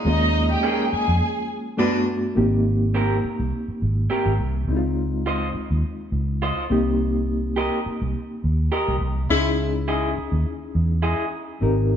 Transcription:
Already playing: A#2 G#3 D#4
0.05 D#2 G#3 A#3 C#4 D#4 F4 D#5
0.51 G4 G5
0.63 C#4 G#4 A#4
0.92 G#4 G#5, muted fingered electric bass stroke
1.08 F2
1.77 G2 B2 G3 A3 B3 D4 F#4 B4
2.35 G#1 A#3 C4 D#4 G4
2.94 C4 G4 A#4
3.25 muted fingered electric bass stroke
3.40 C2
3.68 muted fingered electric bass stroke
3.82 G#1
4.10 C4 G4 A#4
4.25 G#1
4.39 C2
4.67 C#2 G#3 C4 D#4 E4
4.77 F4
5.26 F4 C5 D#5
5.54 muted fingered electric bass stroke
5.71 D#2
6.12 C#2
6.42 F4 C5 D#5
6.70 C2 A#3 C4 D#4 G4
7.56 G4 A#4 D#5
7.86 muted fingered electric bass stroke
8.02 C2
8.44 D#2
8.72 G4 A#4 D#5
8.88 C2
9.01 C2
9.30 C#2 C#3 G#3 C#4 D#4 E4 G#4
9.88 E4 G#4 D#5
10.17 muted fingered electric bass stroke
10.32 D#2
10.75 E2
11.02 E4 G#4 D#5
11.61 G#1 C4 D#4 G4 A#4

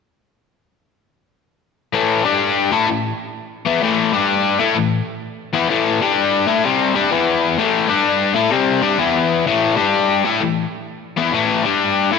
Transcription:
1.93 A2 E3 A3
2.24 G3 D4 G4
2.72 A3 E4 A4
2.87 A2 E3
3.65 E3 B3 E4
3.82 A2 E3 A3
4.12 G3 D4 G4
4.59 A3 E4 A4
4.75 A2 E3
5.54 E3 B3 E4
5.70 A2 E3 A3
6.02 G3 D4 G4
6.47 A3 E4 A4
6.64 C3 G3 C4
6.94 G3 D4 G4
7.12 E3 B3 E4
7.58 A2 E3 A3
7.88 G3 D4 G4
8.34 A3 E4 A4
8.50 C3 G3 C4
8.82 G3 D4 G4
8.98 E3 B3 E4
9.47 A2 E3 A3
9.76 G3 D4 G4
10.25 A3 E4 A4
10.40 A2 E3
11.17 E3 B3 E4
11.33 A2 E3 A3
11.65 G3 D4 G4
12.12 A3 E4 A4

